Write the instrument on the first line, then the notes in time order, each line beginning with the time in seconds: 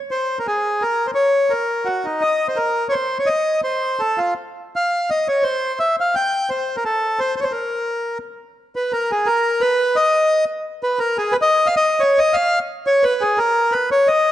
bandoneon
0.11 C5
0.39 A#4
0.47 G#4
0.82 A#4
1.07 C5
1.15 C#5
1.50 A#4
1.85 F#4
2.05 D#4
2.21 D#5
2.48 C5
2.56 A#4
2.89 C5 C#5
3.19 C#5
3.26 D#5
3.64 C5
3.99 A4
4.18 F4
4.76 F5
5.10 D#5
5.28 C#5
5.43 C5
5.79 E5
6.00 F5
6.15 G5
6.50 C5
6.77 A#4
6.85 A4
7.19 C5
7.36 C5
7.41 C5 C#5
7.52 A#4
8.76 B4
8.93 A#4
9.11 G#4
9.26 A#4
9.61 B4
9.96 D#5
10.83 B4
10.99 A#4
11.18 G#4
11.32 B4
11.42 D#5
11.66 F5
11.76 D#5
12.00 C#5
12.19 D#5
12.33 F5
12.87 C#5
13.03 B4
13.21 G#4
13.38 A#4
13.72 B4
13.91 C#5
14.08 D#5